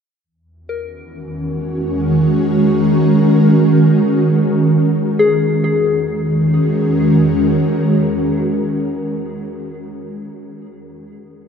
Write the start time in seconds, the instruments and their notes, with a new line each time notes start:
0.24 ambient pad E2
0.46 ambient pad D#3
0.54 ambient pad F#4
0.59 ambient pad C#4
0.69 synth bell A#4
0.98 ambient pad G#3
1.50 ambient pad A#4
5.19 synth bell G#4
5.64 ambient pad E2, synth bell G#4
5.80 ambient pad D#3
5.90 ambient pad G#3
6.05 ambient pad C#4
6.18 ambient pad F#4
6.31 ambient pad A#4